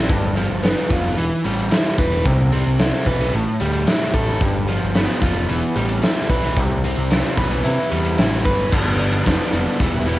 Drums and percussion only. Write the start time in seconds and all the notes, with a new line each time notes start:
0.09 kick, closed hi-hat
0.37 closed hi-hat
0.64 snare, closed hi-hat
0.90 kick, closed hi-hat
1.18 closed hi-hat
1.45 closed hi-hat
1.59 closed hi-hat
1.71 snare, closed hi-hat
1.98 kick, closed hi-hat
2.12 closed hi-hat
2.25 kick, closed hi-hat
2.52 closed hi-hat
2.79 snare, closed hi-hat
3.06 kick, closed hi-hat
3.20 closed hi-hat
3.33 closed hi-hat
3.60 closed hi-hat
3.73 closed hi-hat
3.87 snare, closed hi-hat
4.14 kick, closed hi-hat
4.41 kick, closed hi-hat
4.68 closed hi-hat
4.95 snare, closed hi-hat
5.22 kick, closed hi-hat
5.49 closed hi-hat
5.76 closed hi-hat
5.89 closed hi-hat
6.03 snare, closed hi-hat
6.30 kick, closed hi-hat
6.43 closed hi-hat
6.56 kick, closed hi-hat
6.84 closed hi-hat
7.11 snare, closed hi-hat
7.37 kick, closed hi-hat
7.50 closed hi-hat
7.64 closed hi-hat
7.91 closed hi-hat
8.05 closed hi-hat
8.18 snare, closed hi-hat
8.45 kick, closed hi-hat
8.72 kick, crash
8.99 closed hi-hat
9.12 closed hi-hat
9.26 kick, snare, closed hi-hat
9.53 closed hi-hat
9.80 kick, closed hi-hat
10.06 closed hi-hat